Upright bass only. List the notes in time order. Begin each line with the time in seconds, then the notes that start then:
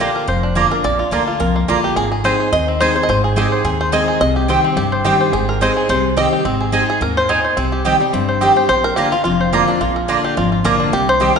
0.28 F1
0.84 A#1
1.12 D2
1.40 C2
1.68 A#1
1.96 G#1
2.52 D#2
3.09 G#1
3.64 D#2
4.21 C2
4.76 G1
5.33 G#1
5.89 C2
6.45 G#1
7.01 D#2
7.57 C2
8.13 G1
8.69 A#1
9.25 F1
9.81 A#1
10.37 G#1
10.65 A#1
10.93 C2